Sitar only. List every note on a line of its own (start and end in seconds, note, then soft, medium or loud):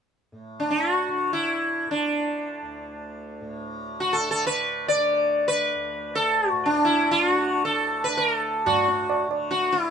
0.60 0.72 D4 medium
0.70 1.33 F#4 medium
1.33 1.91 E4 medium
1.91 3.54 D4 medium
4.00 4.14 F#4 medium
4.13 4.29 A4 medium
4.31 4.46 A4 medium
4.47 4.88 B4 medium
4.88 5.47 D5 medium
5.48 6.17 B4 medium
6.15 6.49 A4 medium
6.49 6.67 F#4 medium
6.66 8.42 D4 medium
6.85 7.11 E4 medium
7.11 7.31 F4 medium
7.31 7.65 F#4 medium
7.65 8.06 A4 medium
8.04 8.18 B4 medium
8.17 8.35 A#4 medium
8.35 8.66 A4 medium
8.66 9.26 F#4 medium
9.51 9.73 F#4 medium
9.72 9.90 E4 medium